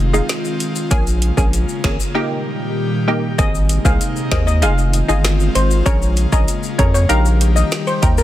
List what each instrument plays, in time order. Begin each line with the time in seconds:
Already playing: sub bass F1, analog synth pad D#3 G#3 C4 F4
0.13 synth stab G#3 D#4 F4, maracas
0.29 finger snap, snare, closed hi-hat, maracas
0.45 maracas
0.60 closed hi-hat, maracas
0.75 maracas
0.91 sub bass A#1, analog synth pad C#3 A#3, synth stab A#3 C#4 G#4, kick, closed hi-hat, maracas
1.07 closed hi-hat, maracas
1.22 closed hi-hat
1.37 sub bass A#1, synth stab A#3 C#4 G#4, kick, maracas
1.53 closed hi-hat, maracas
1.69 maracas
1.84 sub bass G#1, synth stab A#3 C#4 G#4, finger snap, kick, snare, closed hi-hat
2.00 maracas
2.15 analog synth pad A#2 D#3 G3 G4, synth stab A#3 D#4 G4
3.08 synth stab A#3 D#4 G4
3.38 sub bass G#1, analog synth pad C3 G#3 A#3 D#4, synth stab A#3 C4 G#4, steel pan D#5, kick, closed hi-hat, maracas
3.55 maracas
3.69 closed hi-hat, maracas
3.85 sub bass C2, synth stab A#3 C4 G#4, steel pan F5, kick, maracas
4.01 closed hi-hat, maracas
4.16 maracas
4.31 sub bass D#2, synth stab A#3 C4 G#4, steel pan D#5, finger snap, kick, snare, closed hi-hat
4.47 steel pan D#5, maracas
4.62 sub bass F1, analog synth pad D#3 G#3 C4 F4, synth stab D#4 F4 G#4, steel pan F5, closed hi-hat, maracas
4.78 maracas
4.93 closed hi-hat, maracas
5.08 sub bass G1, synth stab D#4 F4 G#4, steel pan D#5, maracas
5.25 finger snap, snare, closed hi-hat, maracas
5.40 maracas
5.55 sub bass G#1, steel pan C5, closed hi-hat, maracas
5.71 maracas
5.86 sub bass A#1, analog synth pad C#3 A#3, synth stab C#4 G#4 A#4, steel pan C#5, kick, closed hi-hat, maracas
6.02 maracas
6.17 closed hi-hat, maracas
6.32 sub bass A#1, synth stab C#4 G#4 A#4, steel pan D#5, kick, maracas
6.48 closed hi-hat, maracas
6.63 maracas
6.78 sub bass F2, synth stab C#4 G#4 A#4, steel pan C#5, kick, closed hi-hat
6.94 steel pan C#5, maracas
7.09 sub bass A#1, analog synth pad D#3 G3 G4, synth stab D#4 G4 A#4, steel pan F5, closed hi-hat, maracas
7.26 maracas
7.41 closed hi-hat, maracas
7.56 steel pan D#5, maracas
7.72 finger snap, snare, closed hi-hat, maracas
7.87 steel pan C5, maracas
8.02 sub bass D#2, synth stab D#4 G4 A#4, kick, closed hi-hat, maracas
8.18 steel pan A#4, maracas